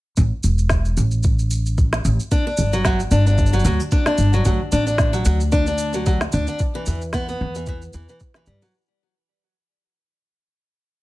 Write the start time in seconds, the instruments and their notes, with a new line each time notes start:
0.17 upright bass A1, kick, shaker
0.43 upright bass E1, shaker
0.58 shaker
0.69 kick, snare, shaker
0.85 shaker
0.97 upright bass A1, shaker
1.11 shaker
1.23 kick, shaker
1.39 shaker
1.51 shaker
1.66 shaker
1.78 kick, shaker
1.93 snare, shaker
2.05 upright bass A1, shaker
2.20 shaker
2.31 steel-string acoustic guitar D4, kick, shaker
2.47 steel-string acoustic guitar D4
2.57 upright bass G1, shaker
2.73 steel-string acoustic guitar F#3, shaker
2.85 steel-string acoustic guitar F#3, kick, snare, shaker
3.00 shaker
3.11 upright bass G1, steel-string acoustic guitar D4, shaker
3.27 steel-string acoustic guitar D4, shaker
3.38 kick, shaker
3.46 shaker
3.53 steel-string acoustic guitar F#3, shaker
3.59 shaker
3.65 upright bass D2, steel-string acoustic guitar F#3, shaker
3.80 shaker
3.91 steel-string acoustic guitar D4, kick, shaker
4.06 steel-string acoustic guitar D4, snare, shaker
4.18 upright bass G1, shaker
4.33 steel-string acoustic guitar F#3, shaker
4.45 upright bass D2, steel-string acoustic guitar F#3, kick, shaker
4.72 upright bass A1, steel-string acoustic guitar D4, shaker
4.87 steel-string acoustic guitar D4, shaker
4.98 kick, snare, shaker
5.13 steel-string acoustic guitar F#3, shaker
5.25 upright bass D2, steel-string acoustic guitar F#3, shaker
5.40 shaker
5.52 steel-string acoustic guitar D4, kick, shaker
5.67 steel-string acoustic guitar D4, shaker
5.78 shaker
5.93 steel-string acoustic guitar F#3, shaker
6.06 steel-string acoustic guitar F#3, kick, shaker
6.21 snare, shaker
6.32 upright bass D2, steel-string acoustic guitar D4, shaker
6.47 steel-string acoustic guitar D4, shaker
6.59 kick, shaker
6.75 steel-string acoustic guitar E3
6.86 upright bass E2, steel-string acoustic guitar E3, shaker
7.01 shaker
7.13 steel-string acoustic guitar B3, kick, snare, shaker
7.28 steel-string acoustic guitar B3, shaker
7.41 upright bass E2
7.55 steel-string acoustic guitar E3, shaker
7.66 steel-string acoustic guitar E3, kick, shaker
7.82 shaker
7.93 upright bass E2, steel-string acoustic guitar E3, shaker
8.09 steel-string acoustic guitar E3, shaker
8.20 kick, shaker
8.34 steel-string acoustic guitar E3, snare, shaker
8.46 upright bass G2, steel-string acoustic guitar G3, shaker
8.62 steel-string acoustic guitar F#3, shaker
8.65 shaker
8.74 shaker
8.81 shaker